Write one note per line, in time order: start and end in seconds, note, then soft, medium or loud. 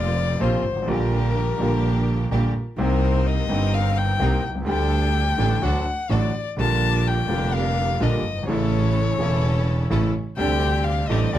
0.00 0.37 F1 medium
0.00 0.37 F2 medium
0.00 0.36 C3 medium
0.00 0.37 F3 medium
0.00 0.37 A#3 medium
0.00 0.38 A#3 medium
0.00 0.38 C4 medium
0.00 0.38 F4 medium
0.00 0.42 D5 medium
0.40 0.61 A#1 medium
0.40 0.61 A#2 medium
0.40 0.61 C3 medium
0.40 0.61 F3 medium
0.40 0.61 A#3 medium
0.40 0.61 C4 medium
0.40 0.61 F4 medium
0.40 0.90 C5 medium
0.65 0.88 G#1 medium
0.71 0.77 G1 soft
0.76 0.82 G#1 medium
0.82 0.88 A1 medium
0.82 1.55 D3 medium
0.87 1.56 A#1 medium
0.87 1.56 A#2 medium
0.87 1.56 G3 medium
0.87 1.56 A#3 medium
0.87 1.57 A#3 medium
0.87 1.57 D4 medium
0.87 1.57 G4 medium
0.87 2.55 A#4 medium
1.58 2.27 A#1 medium
1.58 2.28 A#1 medium
1.58 2.27 A#2 medium
1.58 2.26 D3 medium
1.58 2.27 G3 medium
1.58 2.28 A#3 medium
1.58 2.28 D4 medium
1.58 2.28 G4 medium
2.31 2.51 A#1 medium
2.31 2.51 A#2 medium
2.31 2.51 D3 medium
2.31 2.51 G3 medium
2.31 2.51 A#3 medium
2.31 2.51 D4 medium
2.31 2.51 G4 medium
2.77 3.46 C2 medium
2.77 3.46 C3 medium
2.77 3.45 D#3 medium
2.77 3.46 A#3 medium
2.77 3.46 C4 medium
2.77 3.46 D#4 medium
2.77 3.47 G4 medium
2.77 3.46 A#4 medium
2.77 3.28 C5 medium
3.26 3.75 D#5 medium
3.47 4.17 G1 medium
3.47 4.17 G2 medium
3.47 4.16 D#3 medium
3.47 4.16 A#3 medium
3.47 4.17 C4 medium
3.47 4.17 D#4 medium
3.47 4.17 A#4 medium
3.51 4.18 G4 medium
3.74 3.99 F5 medium
3.98 4.45 G5 medium
4.19 4.40 C2 medium
4.19 4.40 C3 medium
4.19 4.40 D#3 medium
4.19 4.40 A#3 medium
4.19 4.40 C4 medium
4.19 4.41 D#4 medium
4.19 4.40 G4 medium
4.19 4.41 A#4 medium
4.44 4.66 C2 medium
4.49 4.55 B1 soft
4.55 4.61 C2 medium
4.61 4.67 C#2 medium
4.61 5.35 D3 medium
4.66 5.35 D2 medium
4.66 5.35 G3 medium
4.66 5.35 A3 medium
4.66 5.36 D4 medium
4.66 5.36 G4 medium
4.66 5.36 A4 medium
4.66 5.64 G5 medium
5.38 5.58 A1 medium
5.38 5.59 A1 medium
5.38 5.58 A2 medium
5.38 5.58 D3 medium
5.38 5.58 G3 medium
5.38 5.58 A3 medium
5.38 5.59 D4 medium
5.38 5.59 G4 medium
5.38 5.59 A4 medium
5.62 5.82 D2 medium
5.62 5.82 D3 medium
5.62 5.82 F#3 medium
5.62 5.82 A3 medium
5.62 5.83 D4 medium
5.62 5.82 F#4 medium
5.62 5.83 F#4 medium
5.62 5.83 A4 medium
5.62 6.13 F#5 medium
6.09 6.30 A1 medium
6.09 6.30 A2 medium
6.09 6.30 D3 medium
6.09 6.30 F#3 medium
6.09 6.30 A3 medium
6.09 6.30 D4 medium
6.09 6.30 F#4 medium
6.09 6.31 F#4 medium
6.09 6.31 A4 medium
6.09 6.47 D5 medium
6.57 7.26 A#1 medium
6.57 7.27 A#2 medium
6.57 7.25 D3 medium
6.57 7.26 G3 medium
6.57 7.27 A#3 medium
6.57 7.26 D4 medium
6.57 7.27 F4 medium
6.57 7.26 G4 medium
6.57 7.26 A#4 medium
6.57 7.09 A5 medium
7.07 7.56 G5 medium
7.27 7.97 F1 medium
7.27 7.97 F2 medium
7.27 7.96 D3 medium
7.27 7.97 G3 medium
7.27 7.98 A#3 medium
7.27 7.98 D4 medium
7.27 7.98 G4 medium
7.27 7.98 A#4 medium
7.31 7.98 F4 medium
7.54 8.03 F5 medium
8.00 8.21 A#1 medium
8.00 8.21 A#2 medium
8.00 8.21 D3 medium
8.00 8.21 G3 medium
8.00 8.21 A#3 medium
8.00 8.21 D4 medium
8.00 8.21 F4 medium
8.00 8.21 G4 medium
8.00 8.21 A#4 medium
8.00 8.49 D#5 medium
8.25 8.48 G1 medium
8.31 8.37 F#1 soft
8.37 8.43 G1 medium
8.43 8.49 G#1 medium
8.43 9.16 C#3 medium
8.48 9.16 A1 medium
8.48 9.17 A1 medium
8.48 9.17 A2 medium
8.48 9.16 E3 medium
8.48 9.17 A3 medium
8.48 9.16 C#4 medium
8.48 9.16 E4 medium
8.48 9.18 E4 medium
8.48 9.16 A4 medium
8.48 10.11 C#5 medium
9.18 9.87 E1 medium
9.18 9.88 E1 medium
9.18 9.88 E2 medium
9.18 9.86 C#3 medium
9.18 9.87 E3 medium
9.18 9.88 A3 medium
9.18 9.87 C#4 medium
9.18 9.87 E4 medium
9.18 9.88 E4 medium
9.18 9.88 A4 medium
9.90 10.10 A1 medium
9.90 10.11 A1 medium
9.90 10.11 A2 medium
9.90 10.10 C#3 medium
9.90 10.10 E3 medium
9.90 10.11 A3 medium
9.90 10.11 C#4 medium
9.90 10.11 E4 medium
9.90 10.11 A4 medium
10.37 11.06 D2 medium
10.37 11.05 C3 medium
10.37 11.06 D3 medium
10.37 11.06 G3 medium
10.37 11.06 A3 medium
10.37 11.06 C4 medium
10.37 11.06 D4 medium
10.37 11.07 D4 medium
10.37 11.06 G4 medium
10.37 10.85 G5 medium
10.84 11.09 F5 medium
11.08 11.29 A1 loud
11.08 11.29 A1 medium
11.08 11.29 A2 medium
11.08 11.29 C3 medium
11.08 11.29 G3 medium
11.08 11.29 A3 medium
11.08 11.29 C4 medium
11.08 11.29 D4 medium
11.08 11.29 G4 medium
11.08 11.33 D#5 medium
11.31 11.38 D2 medium
11.31 11.38 C3 medium
11.31 11.38 D3 medium
11.31 11.38 F#3 medium
11.31 11.38 A3 medium
11.31 11.38 C4 medium
11.31 11.38 D4 medium
11.31 11.38 F#4 medium
11.31 11.38 D5 loud